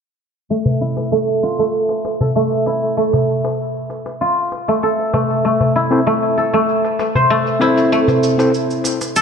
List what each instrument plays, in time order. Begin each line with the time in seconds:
0.50 guzheng A3, cabasa
0.66 darbuka dum
0.81 guzheng E4, cabasa
0.97 darbuka tek, cabasa
1.12 guzheng A3, cabasa
1.43 guzheng F4, cabasa
1.59 guzheng A3, cabasa
1.74 cabasa
1.89 darbuka ka, cabasa
2.05 darbuka tek, cabasa
2.21 guzheng A4, darbuka dum, cabasa
2.36 guzheng A3, cabasa
2.52 darbuka ka, darbuka tek, cabasa
2.66 guzheng E4, darbuka tek, cabasa
2.83 cabasa
2.97 guzheng A3, cabasa
3.13 darbuka ka, darbuka dum, cabasa
3.29 cabasa
3.45 darbuka tek, cabasa
3.60 cabasa
3.76 cabasa
3.90 darbuka ka, cabasa
4.06 darbuka tek, cabasa
4.21 guzheng F4, cabasa
4.37 cabasa
4.52 darbuka ka, cabasa
4.68 guzheng A3, cabasa
4.83 guzheng A4, cabasa
4.99 darbuka ka, cabasa
5.13 guzheng A3, darbuka tek, darbuka dum, cabasa
5.30 darbuka ka, cabasa
5.45 guzheng A3, cabasa
5.61 darbuka dum, cabasa
5.76 guzheng E4, cabasa
5.91 tine electric piano C4 E4 A4 C5, darbuka tek, cabasa
6.07 guzheng A3, cabasa
6.23 cabasa
6.37 guzheng A4, cabasa
6.53 guzheng A3, cabasa
6.69 cabasa
6.84 darbuka ka, cabasa
6.99 darbuka tek, cabasa
7.15 guzheng C5, darbuka dum, cabasa
7.30 guzheng A3, cabasa
7.46 darbuka ka, darbuka tek, cabasa
7.60 tine electric piano C4 E4 A4, guzheng E4, darbuka tek, cabasa
7.64 tine electric piano C5
7.78 cabasa
7.92 guzheng A3, cabasa
8.08 darbuka ka, darbuka dum, cabasa
8.23 cabasa
8.38 tine electric piano C4 E4 A4 C5, darbuka tek, cabasa
8.54 cabasa
8.70 cabasa
8.84 darbuka ka, cabasa
9.01 darbuka tek, cabasa
9.16 guzheng A4, cabasa